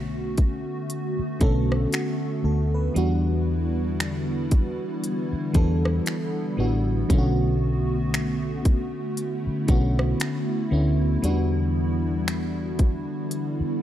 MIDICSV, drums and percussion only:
0, 0, Header, 1, 2, 480
1, 0, Start_track
1, 0, Key_signature, 2, "minor"
1, 0, Tempo, 1034483
1, 1373, Time_signature, 4, 2, 24, 8
1, 6412, End_track
2, 0, Start_track
2, 0, Title_t, "Drums"
2, 174, Note_on_c, 9, 42, 71
2, 176, Note_on_c, 9, 36, 88
2, 220, Note_off_c, 9, 42, 0
2, 222, Note_off_c, 9, 36, 0
2, 416, Note_on_c, 9, 42, 78
2, 463, Note_off_c, 9, 42, 0
2, 652, Note_on_c, 9, 42, 61
2, 655, Note_on_c, 9, 36, 93
2, 699, Note_off_c, 9, 42, 0
2, 701, Note_off_c, 9, 36, 0
2, 797, Note_on_c, 9, 37, 94
2, 844, Note_off_c, 9, 37, 0
2, 893, Note_on_c, 9, 42, 73
2, 899, Note_on_c, 9, 26, 126
2, 940, Note_off_c, 9, 42, 0
2, 946, Note_off_c, 9, 26, 0
2, 1375, Note_on_c, 9, 42, 66
2, 1421, Note_off_c, 9, 42, 0
2, 1857, Note_on_c, 9, 26, 120
2, 1857, Note_on_c, 9, 42, 70
2, 1904, Note_off_c, 9, 26, 0
2, 1904, Note_off_c, 9, 42, 0
2, 2094, Note_on_c, 9, 42, 71
2, 2096, Note_on_c, 9, 36, 94
2, 2140, Note_off_c, 9, 42, 0
2, 2142, Note_off_c, 9, 36, 0
2, 2337, Note_on_c, 9, 42, 80
2, 2383, Note_off_c, 9, 42, 0
2, 2572, Note_on_c, 9, 42, 62
2, 2575, Note_on_c, 9, 36, 92
2, 2619, Note_off_c, 9, 42, 0
2, 2621, Note_off_c, 9, 36, 0
2, 2716, Note_on_c, 9, 37, 96
2, 2763, Note_off_c, 9, 37, 0
2, 2812, Note_on_c, 9, 42, 75
2, 2818, Note_on_c, 9, 26, 127
2, 2859, Note_off_c, 9, 42, 0
2, 2865, Note_off_c, 9, 26, 0
2, 3294, Note_on_c, 9, 36, 112
2, 3294, Note_on_c, 9, 42, 70
2, 3340, Note_off_c, 9, 36, 0
2, 3341, Note_off_c, 9, 42, 0
2, 3777, Note_on_c, 9, 26, 117
2, 3777, Note_on_c, 9, 42, 73
2, 3823, Note_off_c, 9, 26, 0
2, 3823, Note_off_c, 9, 42, 0
2, 4014, Note_on_c, 9, 42, 69
2, 4015, Note_on_c, 9, 36, 89
2, 4061, Note_off_c, 9, 42, 0
2, 4062, Note_off_c, 9, 36, 0
2, 4256, Note_on_c, 9, 42, 78
2, 4302, Note_off_c, 9, 42, 0
2, 4492, Note_on_c, 9, 42, 64
2, 4494, Note_on_c, 9, 36, 96
2, 4539, Note_off_c, 9, 42, 0
2, 4541, Note_off_c, 9, 36, 0
2, 4636, Note_on_c, 9, 37, 100
2, 4682, Note_off_c, 9, 37, 0
2, 4733, Note_on_c, 9, 42, 77
2, 4738, Note_on_c, 9, 26, 127
2, 4779, Note_off_c, 9, 42, 0
2, 4785, Note_off_c, 9, 26, 0
2, 5214, Note_on_c, 9, 42, 69
2, 5260, Note_off_c, 9, 42, 0
2, 5697, Note_on_c, 9, 26, 118
2, 5697, Note_on_c, 9, 42, 74
2, 5744, Note_off_c, 9, 26, 0
2, 5744, Note_off_c, 9, 42, 0
2, 5934, Note_on_c, 9, 42, 66
2, 5936, Note_on_c, 9, 36, 92
2, 5981, Note_off_c, 9, 42, 0
2, 5982, Note_off_c, 9, 36, 0
2, 6176, Note_on_c, 9, 42, 76
2, 6223, Note_off_c, 9, 42, 0
2, 6412, End_track
0, 0, End_of_file